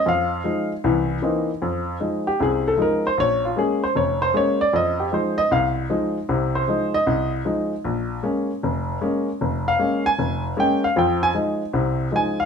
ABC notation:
X:1
M:4/4
L:1/8
Q:"Swing" 1/4=154
K:Fm
V:1 name="Grand piano"
f3 z4 z | z3 G A =A B c | d F A c d c d =d | e G c e f z3 |
z c2 e2 z3 | z8 | z f2 a2 z g f | g a z4 a f |]
V:2 name="Grand piano" clef=bass
F,,2 [F,A,E] z [C,,=E,]2 [E,B,C^D] z | F,,2 [F,A,E] z [C,,C,]2 [F,A,E] z | B,,,2 [A,B,D] z F,,,2 [A,B,D] z | F,,2 [F,A,E] z C,,2 [F,A,E] z |
[C,,C,]2 [F,A,E] z C,,2 [F,A,E] z | B,,,2 [A,B,D] z F,,,2 [A,B,D] z | F,,,2 [A,B,D] z F,,,2 [A,B,D] z | [F,,F,]2 [F,A,E] z [C,,C,]2 [F,A,E] z |]